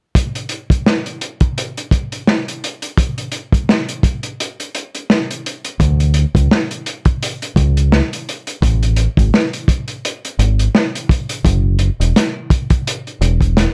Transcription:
0.15 kick, closed hi-hat
0.35 closed hi-hat
0.49 closed hi-hat
0.70 kick, closed hi-hat
0.86 snare
1.06 closed hi-hat
1.21 closed hi-hat
1.40 kick, closed hi-hat
1.58 closed hi-hat
1.77 closed hi-hat
1.91 kick, closed hi-hat
2.12 closed hi-hat
2.27 snare
2.48 closed hi-hat
2.64 closed hi-hat
2.82 closed hi-hat
2.98 kick, closed hi-hat
3.18 closed hi-hat
3.32 closed hi-hat
3.52 kick, closed hi-hat
3.69 snare
3.89 closed hi-hat
4.03 kick, closed hi-hat
4.23 closed hi-hat
4.40 closed hi-hat
4.60 closed hi-hat
4.75 closed hi-hat
4.95 closed hi-hat
5.10 snare
5.31 closed hi-hat
5.46 closed hi-hat
5.65 closed hi-hat
5.80 fingered electric bass D2, kick, closed hi-hat
6.00 closed hi-hat
6.14 closed hi-hat
6.35 fingered electric bass C#2, kick, closed hi-hat
6.51 snare
6.71 closed hi-hat
6.86 closed hi-hat
7.05 kick, closed hi-hat
7.23 closed hi-hat
7.42 closed hi-hat
7.56 fingered electric bass C#2, kick, closed hi-hat
7.77 closed hi-hat
7.92 snare
8.13 closed hi-hat
8.29 closed hi-hat
8.47 closed hi-hat
8.62 fingered electric bass A1, kick, closed hi-hat
8.83 closed hi-hat
8.96 closed hi-hat
9.17 fingered electric bass G#1, kick, closed hi-hat
9.34 snare
9.53 closed hi-hat
9.68 kick, closed hi-hat
9.88 closed hi-hat
10.05 closed hi-hat
10.25 closed hi-hat
10.39 fingered electric bass G#1, closed hi-hat
10.59 closed hi-hat
10.75 snare
10.95 closed hi-hat
11.09 kick, closed hi-hat
11.29 closed hi-hat
11.45 fingered electric bass F#1, kick, closed hi-hat
11.79 closed hi-hat
12.00 fingered electric bass E1, closed hi-hat
12.16 snare, closed hi-hat
12.50 kick, closed hi-hat
12.70 kick, closed hi-hat
12.87 closed hi-hat
13.07 closed hi-hat
13.21 fingered electric bass E1, closed hi-hat
13.41 kick, closed hi-hat
13.57 snare, closed hi-hat

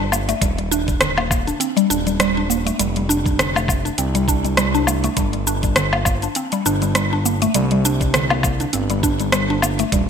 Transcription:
Already playing: analog synth bass G1
0.00 synth pluck D4
0.12 synth pluck A#3, cabasa, low woodblock
0.29 synth pluck A3, closed hi-hat, cabasa
0.41 analog synth bass D#1, synth pluck G3, kick, closed hi-hat, cabasa
0.58 synth pluck G3, closed hi-hat
0.71 synth pluck D4, cabasa
0.88 synth pluck G3, kick, closed hi-hat, cabasa
1.01 synth pluck D3, cross-stick, closed hi-hat, cabasa
1.18 synth pluck A#3, low woodblock
1.31 synth pluck A#3, kick, cabasa, low woodblock
1.47 synth pluck D4, closed hi-hat, cabasa
1.60 synth pluck C4, closed hi-hat, cabasa
1.77 synth pluck G3, closed hi-hat, cabasa
1.90 analog synth bass D#1, synth pluck D4, cabasa
2.07 synth pluck G3, closed hi-hat, cabasa
2.20 synth pluck G3, cross-stick, closed hi-hat, cabasa
2.37 synth pluck D4
2.50 synth pluck A#3, cabasa
2.67 synth pluck A3, closed hi-hat, cabasa
2.79 analog synth bass F1, synth pluck G3, closed hi-hat, cabasa
2.96 synth pluck G3, closed hi-hat
3.09 synth pluck D4, cabasa
3.26 synth pluck G3, kick, closed hi-hat, cabasa
3.39 synth pluck D3, cross-stick, closed hi-hat, cabasa
3.56 synth pluck A3, cabasa, low woodblock
3.68 synth pluck A3, kick, cabasa, low woodblock
3.85 synth pluck D4, closed hi-hat, cabasa
3.98 analog synth bass C2, synth pluck C4, closed hi-hat, cabasa
4.15 synth pluck G3, closed hi-hat, cabasa
4.28 synth pluck D4, kick, cabasa
4.45 synth pluck G3, closed hi-hat, cabasa
4.57 synth pluck G3, cross-stick, closed hi-hat, cabasa
4.75 synth pluck D4, cabasa
4.87 synth pluck A3, cabasa, low woodblock
5.04 synth pluck A3, closed hi-hat, cabasa
5.17 analog synth bass G1, synth pluck G3, kick, closed hi-hat, cabasa
5.33 synth pluck G3, closed hi-hat
5.47 synth pluck D4, cabasa
5.63 synth pluck G3, kick, closed hi-hat, cabasa
5.76 synth pluck D3, cross-stick, closed hi-hat, cabasa
5.93 synth pluck A#3, low woodblock
6.05 synth pluck A#3, kick, cabasa, low woodblock
6.22 synth pluck D4, closed hi-hat, cabasa
6.35 synth pluck C4, closed hi-hat, cabasa
6.52 synth pluck G3, closed hi-hat, cabasa
6.66 analog synth bass G1, synth pluck D4, cabasa
6.82 synth pluck G3, closed hi-hat, cabasa
6.95 synth pluck G3, cross-stick, closed hi-hat, cabasa
7.13 synth pluck D4
7.26 synth pluck A#3, cabasa
7.42 synth pluck A3, closed hi-hat, cabasa
7.54 analog synth bass C2, synth pluck G3, closed hi-hat, cabasa
7.71 synth pluck G3, closed hi-hat
7.85 synth pluck D4, cabasa
8.01 synth pluck G3, kick, closed hi-hat, cabasa
8.14 synth pluck D3, cross-stick, closed hi-hat, cabasa
8.30 synth pluck A#3, low woodblock
8.43 synth pluck A#3, kick, cabasa, low woodblock
8.60 synth pluck D4, closed hi-hat, cabasa
8.73 analog synth bass G1, synth pluck C4, closed hi-hat, cabasa
8.90 synth pluck G3, closed hi-hat, cabasa
9.03 synth pluck D4, kick, cabasa
9.20 synth pluck G3, closed hi-hat, cabasa
9.32 synth pluck G3, cross-stick, closed hi-hat, cabasa
9.50 synth pluck D4
9.62 synth pluck A#3, cabasa, low woodblock
9.79 synth pluck A3, closed hi-hat, cabasa
9.92 analog synth bass D#1, synth pluck G3, kick, closed hi-hat, cabasa

